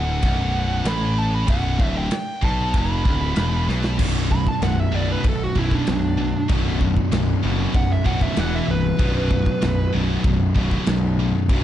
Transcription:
0.00 0.20 D1 loud
0.00 0.22 D2 medium
0.00 0.89 F#5 medium
0.23 0.82 B0 loud
0.23 0.85 B1 loud
0.23 kick medium
0.23 ride bell medium
0.85 1.44 A1 loud
0.85 1.47 A2 medium
0.85 1.19 B5 medium
0.85 snare loud
0.85 ride bell medium
1.18 1.34 A5 medium
1.35 1.50 B5 loud
1.47 1.77 B0 loud
1.47 1.78 B1 loud
1.47 1.93 F#5 loud
1.47 kick loud
1.47 ride bell medium
1.79 2.09 D1 medium
1.79 2.10 D2 loud
1.79 kick loud
1.98 2.45 G5 medium
2.11 muted distorted electric guitar stroke soft
2.11 muted picked electric bass stroke soft
2.11 snare loud
2.11 ride bell medium
2.42 2.72 B1 medium
2.42 2.73 B2 medium
2.42 2.73 A5 medium
2.42 kick medium
2.74 3.03 F1 loud
2.74 3.04 F2 loud
2.74 kick medium
2.74 ride bell medium
2.78 3.66 B5 medium
3.05 3.35 D1 loud
3.05 3.35 D2 medium
3.05 kick loud
3.36 3.65 E1 medium
3.36 3.66 E2 loud
3.36 snare loud
3.36 ride bell medium
3.68 3.97 B1 medium
3.68 3.97 B2 medium
3.68 snare medium
3.84 snare medium
3.98 4.45 B0 medium
3.98 4.28 B1 medium
3.98 4.28 F#2 loud
3.98 4.28 B2 loud
3.98 6.48 F#3 medium
3.98 6.49 D4 medium
3.98 kick loud
3.98 crash loud
3.98 crash medium
4.30 4.59 B1 medium
4.30 4.59 F#2 medium
4.30 4.46 B5 loud
4.30 kick medium
4.47 4.62 A5 medium
4.47 kick medium
4.62 4.84 B0 medium
4.62 4.90 B1 medium
4.62 4.90 F#2 medium
4.62 4.80 F#5 medium
4.62 snare loud
4.62 crash medium
4.80 4.94 E5 medium
4.92 5.15 B0 medium
4.92 5.22 B1 medium
4.92 5.22 F#2 medium
4.92 5.22 B2 medium
4.92 5.09 D5 medium
5.12 5.25 B4 medium
5.24 5.47 B0 medium
5.24 5.52 B1 medium
5.24 5.53 F#2 medium
5.24 kick loud
5.24 crash medium
5.29 5.42 A4 medium
5.43 5.57 F#4 medium
5.55 5.78 B0 medium
5.55 5.85 B1 medium
5.55 5.85 F#2 medium
5.55 5.85 B2 medium
5.55 kick medium
5.59 5.75 E4 medium
5.71 5.88 D4 medium
5.71 kick medium
5.86 6.15 B1 medium
5.86 6.32 B1 medium
5.86 6.15 F#2 medium
5.86 6.49 D4 medium
5.86 snare loud
5.86 crash medium
6.18 6.46 B1 medium
6.18 6.46 F#2 medium
6.48 6.95 B0 medium
6.48 6.78 B1 medium
6.48 6.79 F#2 loud
6.48 6.79 B2 medium
6.48 8.36 F#3 medium
6.48 8.36 D4 medium
6.48 kick loud
6.48 crash medium
6.81 7.09 B1 medium
6.81 7.09 F#2 medium
6.81 kick medium
6.97 kick medium
7.12 7.34 B0 medium
7.12 7.40 B1 medium
7.12 7.40 F#2 medium
7.12 snare loud
7.12 crash medium
7.43 7.66 F#1 medium
7.43 7.72 B1 medium
7.43 7.73 F#2 medium
7.43 7.73 B2 medium
7.74 7.97 B0 loud
7.74 8.02 B1 medium
7.74 8.03 F#2 medium
7.74 7.90 F#5 loud
7.74 kick loud
7.74 crash medium
7.93 8.06 E5 loud
8.05 8.28 B0 medium
8.05 8.35 B1 medium
8.05 8.35 F#2 medium
8.05 8.34 B2 loud
8.05 8.22 F#5 loud
8.05 kick medium
8.21 8.39 E5 medium
8.21 kick medium
8.35 8.60 E1 loud
8.35 8.66 E2 medium
8.35 8.66 B2 loud
8.35 8.66 E3 loud
8.35 snare loud
8.35 crash medium
8.39 8.54 F#5 loud
8.55 8.69 E5 loud
8.67 8.91 C1 medium
8.67 8.96 E2 medium
8.67 8.96 B2 medium
8.67 9.91 B4 loud
8.98 9.44 B0 medium
8.98 9.28 B1 medium
8.98 9.29 F#2 loud
8.98 9.29 B2 loud
8.98 11.49 F#3 medium
8.98 11.49 D4 medium
8.98 kick loud
8.98 crash medium
9.30 9.58 B1 medium
9.30 9.59 F#2 medium
9.30 kick medium
9.46 kick medium
9.62 9.85 B0 loud
9.62 9.90 B1 medium
9.62 9.90 F#2 medium
9.62 snare loud
9.62 crash medium
9.93 10.17 B0 medium
9.93 10.22 B1 medium
9.93 10.23 F#2 medium
9.93 10.23 B2 medium
10.24 10.47 B0 loud
10.24 10.53 B1 medium
10.24 10.53 F#2 medium
10.24 kick loud
10.24 crash medium
10.55 10.78 B0 medium
10.55 10.85 B1 medium
10.55 10.85 F#2 loud
10.55 10.85 B2 loud
10.55 kick medium
10.71 kick medium
10.87 11.15 B1 medium
10.87 11.32 B1 medium
10.87 11.15 F#2 medium
10.87 snare loud
10.87 crash medium
11.19 11.47 B1 medium
11.19 11.47 F#2 medium
11.49 11.64 B0 loud
11.49 11.64 B1 loud
11.49 11.64 F#2 loud
11.49 11.64 B2 loud
11.49 11.64 F#3 medium
11.49 11.64 D4 medium
11.49 kick loud
11.49 crash medium

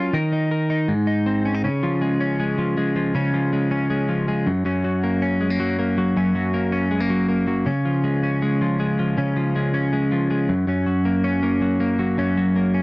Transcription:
0.00 0.13 F#3 medium
0.00 0.17 C#4 medium
0.00 0.17 F4 medium
0.00 0.13 A#4 medium
0.13 0.92 D#3 medium
0.13 0.50 A#4 medium
0.33 0.69 D#4 medium
0.51 0.92 A#4 medium
0.70 0.92 D#4 medium
0.88 1.67 G#2 medium
1.07 1.45 D#4 medium
1.26 1.68 C4 medium
1.45 1.55 C#4 medium
1.55 1.64 D#4 medium
1.64 3.14 C#3 medium
1.64 2.20 C#4 medium
1.83 2.57 F3 medium
2.01 2.38 G#3 medium
2.21 3.15 C#4 medium
2.40 2.76 G#3 soft
2.58 2.95 F3 medium
2.77 3.52 G#3 medium
2.96 3.33 F3 medium
3.15 4.51 C#3 medium
3.15 3.71 C#4 medium
3.34 4.08 F3 medium
3.53 3.89 G#3 medium
3.71 4.65 C#4 medium
3.90 4.27 G#3 medium
4.09 4.50 F3 soft
4.28 4.51 G#3 medium
4.47 4.64 F#2 medium
4.65 6.15 F#2 medium
4.65 5.22 C#4 medium
4.84 5.59 F#3 medium
5.03 5.40 A#3 medium
5.22 6.17 C#4 medium
5.41 5.50 G#3 soft
5.50 5.78 A#3 soft
5.60 5.97 F#3 medium
5.79 6.53 A#3 medium
5.98 6.34 F#3 medium
6.17 7.67 F#2 medium
6.17 6.72 C#4 medium
6.35 7.09 F#3 medium
6.54 6.91 A#3 medium
6.72 7.67 C#4 medium
6.91 7.00 G#3 medium
7.00 7.27 A#3 soft
7.10 7.46 F#3 medium
7.29 7.70 A#3 medium
7.47 7.71 F#3 medium
7.66 9.16 C#3 medium
7.66 8.23 C#4 soft
7.85 8.60 F3 medium
8.04 8.41 G#3 soft
8.23 9.18 C#4 medium
8.42 8.78 G#3 medium
8.61 8.98 F3 medium
8.80 9.54 G#3 medium
8.99 9.35 F3 medium
9.18 10.53 C#3 medium
9.18 9.74 C#4 medium
9.37 10.11 F3 medium
9.56 9.92 G#3 medium
9.74 10.68 C#4 medium
9.93 10.29 G#3 medium
10.12 10.53 F3 soft
10.30 10.53 G#3 medium
10.49 10.67 F#2 medium
10.67 12.17 F#2 medium
10.67 11.24 C#4 soft
10.86 11.61 F#3 medium
11.05 11.42 A#3 medium
11.24 12.18 C#4 medium
11.43 11.80 A#3 medium
11.62 11.98 F#3 medium
11.80 12.56 A#3 medium
11.99 12.36 F#3 medium
12.18 12.82 F#2 medium
12.18 12.74 C#4 medium
12.37 12.82 F#3 medium
12.56 12.82 A#3 soft
12.74 12.82 C#4 medium

